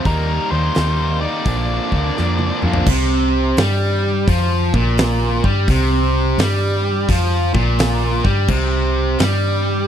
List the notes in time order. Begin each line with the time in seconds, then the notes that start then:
0.05 D#2 D#3 G3 A#3 D#4 A#4, kick, open hi-hat
0.50 D#2 D#3 G3 A#3 D#4 C5
0.75 D#2 D#3 G3 A#3 D#4, snare, open hi-hat
1.21 D#3 G3 A#3 D#4 D5
1.45 A#1 A#2 D3 F3 A#3 D4, kick, open hi-hat
1.92 D2 A#2 D3 F3 A#3 D4, kick
2.17 F2 A#2 D3 F3 A#3 D4, snare
2.39 high tom
2.62 F2 A#2 D3 F3 A#3 D4, mid tom
2.74 floor tom
2.87 C2 C3, kick, crash
3.57 G2 G3, snare, open hi-hat
4.28 F2 F3, kick, open hi-hat
4.73 A#1 A#2, kick
4.98 snare, open hi-hat
5.44 G2 G3, kick
5.68 C2 C3, kick, open hi-hat
6.38 G2 G3, snare, open hi-hat
7.08 F2 F3, kick, open hi-hat
7.54 A#1 A#2, kick
7.79 snare, open hi-hat
8.24 G2 G3, kick
8.48 C2 C3, kick, crash
9.19 G2 G3, snare, open hi-hat